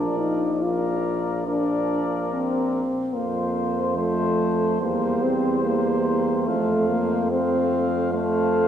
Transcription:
Already playing: tuba A#1, trombone F3, french horn D4, flugelhorn A#4, trumpet D5
0.19 french horn D#4
0.62 trombone F3, french horn F4, flugelhorn A#4, trumpet D5
1.47 trombone F3, french horn D4, flugelhorn A#4, trumpet D5
2.31 french horn C4
3.13 tuba F2, trombone F3, french horn A#3, flugelhorn C5, trumpet C5
3.97 trombone F3, french horn A3, flugelhorn C5, trumpet C5
4.80 tuba E2, trombone G3, french horn A#3, flugelhorn C5, trumpet C5
5.23 french horn C4
5.64 french horn A#3
6.47 tuba F2, french horn A3, trombone A3, flugelhorn C5, trumpet F5
6.89 french horn A#3
7.30 trombone A3, french horn C4, flugelhorn C5, trumpet F5
8.13 trombone A3, french horn A3, flugelhorn C5, trumpet F5

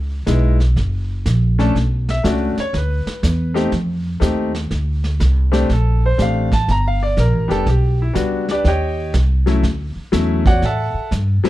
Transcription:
Already playing: upright bass C#2
0.26 upright bass B1, grand piano G#3 B3 D#4 E4, kick, snare, hi-hat pedal
0.60 snare
0.76 upright bass F#1, brush sweep, kick, snare
1.26 upright bass A#1, kick, snare, hi-hat pedal
1.59 grand piano A3 C#4 D4 A4, snare
1.75 upright bass B1, brush sweep, kick, snare
2.09 grand piano E5, snare
2.24 upright bass C#2, grand piano A3 C#4 D4 F#4 D5, kick, snare, hi-hat pedal
2.56 grand piano C#5, muted upright bass stroke, snare
2.73 upright bass D2, grand piano B4, brush sweep, kick, snare
3.06 muted upright bass stroke, snare
3.23 upright bass E2, kick, snare, hi-hat pedal
3.54 grand piano A3 C4 D#4 G4, snare
3.72 upright bass F2, brush sweep, kick, snare
4.20 upright bass D#2, grand piano A3 C4 D#4 G4, kick, snare, hi-hat pedal
4.55 snare
4.71 upright bass D2, brush sweep, kick, snare
5.04 snare
5.20 upright bass C2, kick, snare, hi-hat pedal
5.52 grand piano A3 C4 D4 G4, snare
5.69 upright bass A#1, grand piano A4, brush sweep, kick, snare
6.06 grand piano C5
6.18 upright bass A1, grand piano A3 C4 D4 G4, kick, snare, hi-hat pedal
6.22 grand piano F5
6.52 grand piano A5, kick, snare
6.68 upright bass G1, grand piano A#5, brush sweep, kick, snare
6.88 grand piano F5
7.03 grand piano D5
7.17 upright bass A#1, grand piano A#4, kick, snare, hi-hat pedal
7.33 upright bass A1
7.48 upright bass F1, grand piano G3 B3 D4 G4 A4, snare
7.66 upright bass B1, grand piano G4, brush sweep, kick, snare
8.02 grand piano E4
8.13 upright bass C#2, grand piano G3 B3 D4 F#4, kick, snare, hi-hat pedal
8.48 grand piano D4 G4 B4 D5, snare
8.64 upright bass D#2, grand piano G4 C#5 D#5 G5, brush sweep, kick, snare
9.14 upright bass C2, kick, snare, hi-hat pedal
9.46 grand piano F#3 A3 C#4 E4, snare
9.63 upright bass D2, brush sweep, kick, snare
9.96 muted upright bass stroke
10.12 upright bass E2, grand piano F#3 A3 C#4 E4, kick, snare, hi-hat pedal
10.46 grand piano F#4 C#5 D5 F#5, kick, snare
10.62 upright bass A2, grand piano A4 E5 F#5 A5, brush sweep, kick, snare
10.94 muted upright bass stroke
11.11 upright bass G2, kick, snare, hi-hat pedal
11.43 grand piano F#3 A3 C4 E4, muted upright bass stroke, snare

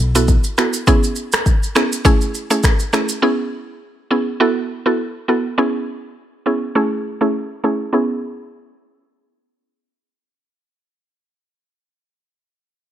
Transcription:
Already playing: synth pluck B3 E4 F#4 A4
0.00 fingered electric bass B1
0.15 synth pluck B3 E4 F#4 A4, shaker
0.28 kick, shaker
0.44 shaker
0.58 synth pluck B3 E4 F#4 A4, finger snap, cross-stick, shaker
0.73 shaker
0.87 synth pluck B3 C#4 E4 G#4, kick, shaker
1.04 shaker
1.16 shaker
1.32 finger snap, cross-stick, shaker
1.46 kick, shaker
1.63 shaker
1.75 synth pluck B3 C#4 E4 G#4, finger snap, cross-stick, shaker
1.92 shaker
2.05 synth pluck A3 C#4 E4 G#4, kick, shaker
2.21 shaker
2.35 shaker
2.50 synth pluck A3 C#4 E4 G#4, shaker
2.63 finger snap, kick, cross-stick, shaker
2.79 shaker
2.93 synth pluck A3 C#4 E4 G#4, finger snap, cross-stick, shaker
3.09 shaker
3.22 synth pluck B3 C#4 E4 G#4
4.11 synth pluck B3 C#4 E4 G#4
4.40 synth pluck B3 E4 F#4 A4
4.86 synth pluck B3 E4 F#4 A4
5.28 synth pluck B3 E4 F#4 A4
5.58 synth pluck B3 C#4 E4 G#4
6.46 synth pluck B3 C#4 E4 G#4
6.75 synth pluck A3 C#4 E4 G#4
7.21 synth pluck A3 C#4 E4 G#4
7.64 synth pluck A3 C#4 E4 G#4
7.93 synth pluck B3 C#4 E4 G#4

